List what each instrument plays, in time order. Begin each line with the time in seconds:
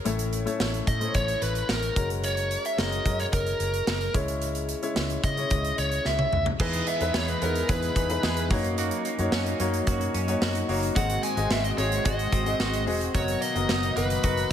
0.05 fingered electric bass A1, grand piano A2 A3 C#4 E4 C#5, closed hi-hat
0.19 closed hi-hat
0.33 closed hi-hat
0.46 grand piano A3 C#4 E4 C#5, closed hi-hat
0.60 fingered electric bass A1, snare
0.74 closed hi-hat
0.87 fingered electric bass A2, lead electric guitar D#5, kick, closed hi-hat
1.00 grand piano A3 C#4 E4 C5, closed hi-hat
1.08 grand piano C#5
1.14 fingered electric bass A1, lead electric guitar C#5, kick, closed hi-hat
1.28 closed hi-hat
1.42 fingered electric bass A1, lead electric guitar B4, closed hi-hat
1.55 closed hi-hat
1.69 fingered electric bass A1, lead electric guitar A#4, snare
1.83 closed hi-hat
1.96 fingered electric bass F#1, grand piano G#3 C#4 F#4 A#4, kick, closed hi-hat
2.10 closed hi-hat
2.24 lead electric guitar C#5, closed hi-hat
2.37 closed hi-hat
2.51 closed hi-hat
2.65 lead electric guitar E5, closed hi-hat
2.77 fingered electric bass F#1, grand piano G#3 C#4 F#4 A#4, lead electric guitar D#5, snare
2.92 closed hi-hat
3.05 fingered electric bass F#2, grand piano G#3 C#4 F#4 A#4, kick, closed hi-hat
3.20 lead electric guitar C#5, closed hi-hat
3.33 fingered electric bass F#1, lead electric guitar A#4, kick, closed hi-hat
3.47 closed hi-hat
3.60 fingered electric bass F#1, closed hi-hat
3.74 closed hi-hat
3.87 fingered electric bass F#1, snare
4.01 closed hi-hat
4.14 fingered electric bass C#2, grand piano C#3 G#3 C#4 E4 C#5, kick, closed hi-hat
4.28 closed hi-hat
4.42 closed hi-hat
4.55 closed hi-hat
4.69 closed hi-hat
4.82 grand piano G#3 C#4 E4 C#5, closed hi-hat
4.96 fingered electric bass C#2, snare
5.10 closed hi-hat
5.24 fingered electric bass C#3, lead electric guitar D#5, kick, closed hi-hat
5.37 grand piano G#3 C#4 E4 C#5, closed hi-hat
5.50 fingered electric bass C#2, kick, closed hi-hat
5.65 closed hi-hat
5.78 fingered electric bass C#2, lead electric guitar C#5, closed hi-hat
5.92 closed hi-hat
6.05 fingered electric bass C#2, lead electric guitar E5, snare
6.19 high tom
6.33 fingered electric bass C#2, mid tom
6.46 floor tom
6.59 fingered electric bass E2, analog synth pad E3 B3 D#4 G#4, clean electric guitar E3 G#4, grand piano E3 G#3 D#4 E4 B4, lead electric guitar D#5, kick, crash
6.73 closed hi-hat
6.87 clean electric guitar B3, lead electric guitar E5, closed hi-hat
7.00 fingered electric bass E2, grand piano G#3 D#4 E4 B4, closed hi-hat
7.14 fingered electric bass E2, clean electric guitar D#4, lead electric guitar C#5, snare
7.28 lead electric guitar B4, closed hi-hat
7.41 fingered electric bass E2, grand piano G#3 D#4 E4 B4, clean electric guitar B3, lead electric guitar A#4, closed hi-hat
7.55 closed hi-hat
7.68 fingered electric bass E2, grand piano G#3 D#4 E4 B4, clean electric guitar G#4, lead electric guitar B4, kick, closed hi-hat
7.82 closed hi-hat
7.96 fingered electric bass E2, clean electric guitar D#4, kick, closed hi-hat
8.09 grand piano G#3 D#4 E4 B4, closed hi-hat
8.23 fingered electric bass E2, clean electric guitar G#4, snare
8.37 closed hi-hat
8.50 fingered electric bass F#2, analog synth pad F#3 C#4, grand piano A#3 D#4 F#4 C#5, clean electric guitar A#3, kick, open hi-hat
8.64 closed hi-hat
8.78 clean electric guitar A#3 F#4, closed hi-hat
8.91 closed hi-hat
9.05 clean electric guitar A#3, closed hi-hat
9.19 fingered electric bass F#2, grand piano A#3 D#4 F#4 C#5, closed hi-hat
9.32 fingered electric bass F#2, clean electric guitar C#4, snare
9.46 closed hi-hat
9.59 fingered electric bass F#2, grand piano A#3 D#4 F#4 C#5, clean electric guitar A#3, closed hi-hat
9.74 closed hi-hat
9.87 fingered electric bass F#2, grand piano A#3 D#4 F#4 C#5, clean electric guitar F#4, kick, closed hi-hat
10.01 closed hi-hat
10.14 fingered electric bass F#2, clean electric guitar C#4, closed hi-hat
10.28 grand piano A#3 D#4 F#4 C#5, closed hi-hat
10.42 fingered electric bass F#2, clean electric guitar F#4, snare
10.55 closed hi-hat
10.68 fingered electric bass F#1, grand piano A#3 D#4 F#4 C#5, clean electric guitar A#3, open hi-hat
10.83 closed hi-hat
10.95 fingered electric bass G#1, grand piano G#2 C4 F#4 G#4 D#5, clean electric guitar D#3 F#4, analog synth pad G#3 C4 F#4, lead electric guitar F#5, kick, closed hi-hat
11.10 closed hi-hat
11.23 clean electric guitar G#3, lead electric guitar G#5, closed hi-hat
11.37 fingered electric bass G#1, grand piano C4 F#4 G#4 D#5, closed hi-hat
11.50 fingered electric bass G#1, clean electric guitar C4, lead electric guitar E5, snare
11.64 lead electric guitar D#5, closed hi-hat
11.77 fingered electric bass G#1, clean electric guitar G#3, grand piano C4 F#4 G#4 D#5, lead electric guitar C#5, closed hi-hat
11.92 closed hi-hat
12.05 fingered electric bass G#1, grand piano C4 F#4 G#4 D#5, clean electric guitar F#4, lead electric guitar D#5, kick, closed hi-hat
12.19 closed hi-hat
12.32 fingered electric bass G#1, clean electric guitar C4, kick, closed hi-hat
12.45 grand piano C4 F#4 G#4 D#5, closed hi-hat
12.60 fingered electric bass G#1, clean electric guitar F#4, snare
12.73 closed hi-hat
12.87 fingered electric bass E1, clean electric guitar G#3, grand piano C4 F#4 G#4 D#5, open hi-hat
13.01 closed hi-hat
13.14 fingered electric bass F#1, analog synth pad B2 D#3 F#3, clean electric guitar F#3 F#4, grand piano B3 F#4 A#4 D#5, lead electric guitar C#5, kick, closed hi-hat
13.28 closed hi-hat
13.41 clean electric guitar A#3, lead electric guitar D#5, closed hi-hat
13.55 fingered electric bass F#1, grand piano B3 F#4 A#4 D#5, closed hi-hat
13.69 fingered electric bass F#1, clean electric guitar D#4, snare
13.83 closed hi-hat
13.96 fingered electric bass F#1, clean electric guitar A#3, grand piano B3 F#4 A#4 D#5, lead electric guitar B4, closed hi-hat
14.10 closed hi-hat
14.23 fingered electric bass F#1, grand piano B3 F#4 A#4 D#5, clean electric guitar F#4, kick, closed hi-hat
14.37 closed hi-hat